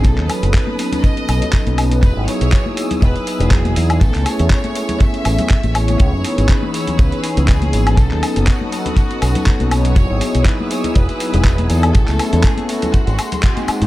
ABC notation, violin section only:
X:1
M:4/4
L:1/16
Q:"Swing 16ths" 1/4=121
K:E
V:1 name="Violin section"
A2 B2 B4 d6 z2 | B2 c4 z2 B4 G4 | A2 c2 c4 e6 c2- | c4 B2 c3/2 c/2 B2 G2 G4 |
A4 F8- F2 c2- | c4 B2 c2 B6 A2- | A4 G2 F8 z2 |]